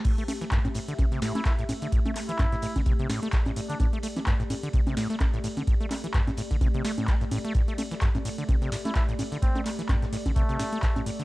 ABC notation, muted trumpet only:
X:1
M:4/4
L:1/16
Q:"Swing 16ths" 1/4=128
K:Am
V:1 name="Muted trumpet"
z8 z3 E E z3 | z3 E4 z8 D | D z12 z3 | z16 |
z8 z3 E E z3 | C z6 z A,6 z2 |]